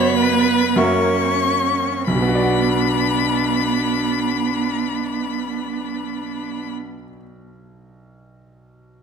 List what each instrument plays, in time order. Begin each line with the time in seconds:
Already playing: grand piano F#2 B3 F#4 D5, cello B3, viola C#5, violin B5
0.19 viola B4
0.76 grand piano F#2 A#3 F#4 E5, cello C#4, viola A#4, violin C#6
2.06 grand piano B1, cello B3, viola D4, violin B5
2.15 grand piano B2
2.22 grand piano B3
2.29 grand piano F#4
2.35 grand piano D5
2.43 grand piano F#5